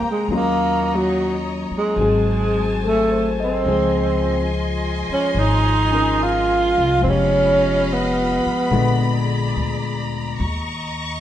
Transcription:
Already playing: G#3 A#3 C4 D#4 G4 C5 G5 A#5
0.02 muted upright bass stroke
0.11 G#3
0.28 D#2 F#3 A#3 C#4 D#4 C#5 D#5
0.32 A#3 F4
0.96 F#3
1.71 muted upright bass stroke
1.78 G#3
1.96 G#1 F#3 C4 F#4 C5 G#5 A5
2.00 D#4 G#4
2.84 A3 A4
3.12 C5
3.40 C4 D#5
3.66 C#2 F3 G#3 D#4 F4 G#4 C5 D#5 G#5 C6
5.09 muted upright bass stroke
5.13 C#4
5.35 G#1
5.39 D#4
5.91 C#4 D#4 F4 A#4
6.22 F4
6.78 C2
6.99 F3 G#3 F5
7.03 F1 B3 C4 D#4 D#5 B5
7.09 C#4 G4
7.93 B3
8.46 muted upright bass stroke
8.71 A#1 A#2 D3 G#3 B3 F4 G#4 D5 A#5
9.56 D2
10.40 D#2 D#5 C#6

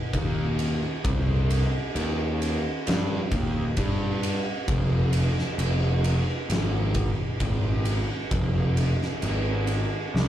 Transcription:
0.13 D#2, kick, ride
0.59 ride
1.04 C2, kick, ride
1.50 ride
1.95 D#2, ride
2.42 ride
2.87 G2, snare, ride
3.31 D#2, kick, ride
3.77 G2, kick, ride
4.23 ride
4.68 F1, kick, ride
5.13 ride
5.39 snare
5.58 F1, ride
6.04 ride
6.49 G#1, snare, ride
6.94 kick, ride
7.40 G#1, kick, ride
7.85 ride
8.31 F1, kick, ride
8.77 ride
9.02 snare
9.22 G#1, ride
9.67 ride
10.14 C2, snare

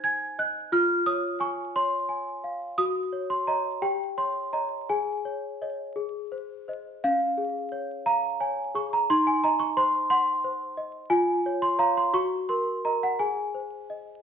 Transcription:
Already playing: D#4 C5 G#5 F#6 G#6
0.04 G#5 G#6
0.39 D#5 F#6
0.72 F4 F6
1.06 C#5 D#6
1.40 G#5 C#6
1.76 C#5 C6
2.09 G#5
2.44 F5
2.78 F#4 D#6
3.13 C#5
3.30 C6
3.47 C#5 D#5 A#5
3.82 G4 G5
4.18 C#5 C6
4.53 C#5 D#5 A#5
4.89 G#4 G#5
5.25 C#5
5.62 C#5 D#5
5.96 G#4
6.32 C5
6.68 C5 D#5
7.04 C#4 F5
7.38 G#4
7.72 C#5
8.06 F5 A#5
8.40 C#5 G#5
8.75 G#4 C#6
8.93 A#5
9.10 D#4 C6
9.27 G#5
9.44 D#5 A#5
9.60 C#6
9.77 C5 C6
10.10 F#5 C6
10.44 C5
10.77 D#5
11.10 F4 G#5
11.46 C#5
11.62 C6
11.79 C#5 F5 A#5
11.97 C6
12.13 F#4 C#6
12.49 A#4 C6
12.85 A#4 D#5 A#5
13.03 F#5
13.19 G#4 G#5
13.55 C5
13.90 D#5

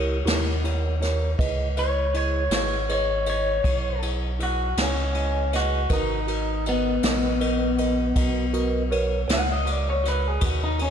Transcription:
Already playing: C#2 E4 G4 A#4 C#5
0.25 D#2 E4 G4 A#4 C#5, snare, ride
0.64 E4 G4 A#4 C#5, ride
1.00 E4 G4 A#4 C#5, snare, ride
1.38 C#2 E4 G#4 B4 D#5, kick, ride
1.77 E4 G#4 B4 C#5 D#5, ride
2.14 E4 G#4 B4 C#5 D#5, ride
2.50 G#1 E4 G#4 B4 D#5, snare, ride
2.55 C#5
2.89 E4 G#4 B4 C#5 D#5, ride
3.26 E4 G#4 B4 C#5 D#5, ride
3.64 B1 E4 G#4 B4 D#5, kick, ride
4.02 E4 G#4 B4 D#5, ride
4.39 E4 F#4 G#4 B4 D#5, ride
4.77 C#2 E4 G#4 B4 D#5, snare, ride
4.82 C#4
5.15 E4 G#4 B4 D#5, ride
5.52 E4 F#4 G#4 B4 D#5, snare, ride
5.90 G#1 D#4 F#4 A#4 B4 D#5, kick, ride
6.27 F#4 A#4 B4 D#5, ride
6.66 B3 F#4 A#4 B4 D#5, ride
7.03 A#1 F#4 A#4 B4 D#5, snare, ride
7.40 F#4 A#4 B4 D#5, ride
7.78 F#4 A#4 B4 D#5, ride
8.15 B1 F#4 A#4 B4 D#5, kick, ride
8.53 F#4 A#4 B4 D#5, ride
8.91 F#4 A#4 B4 C#5, ride
9.27 C#2 F#4 A#4 B4 C#5, snare, ride
9.33 F#5
9.52 D#5
9.65 F#4 A#4 B4 C#5, ride
9.71 D5
9.90 C#5
10.04 F#4 A#4 B4 D#5, snare, ride
10.08 B4
10.28 G#4
10.41 D#2 F#4 A#4 B4 D#5, kick, ride
10.45 F#4
10.64 D#4
10.78 C#4 F#4 A#4 B4 D#5, ride

